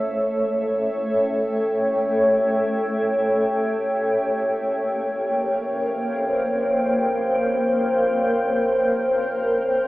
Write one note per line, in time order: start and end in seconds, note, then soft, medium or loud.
0.00 4.16 A1 medium
0.00 4.19 A3 medium
0.00 4.20 A4 medium
0.00 9.88 C#5 medium
0.00 5.43 E5 medium
0.29 9.88 G5 medium
4.19 9.88 A#1 medium
4.19 9.88 A#3 medium
4.38 9.88 A#4 medium
5.09 9.88 C5 medium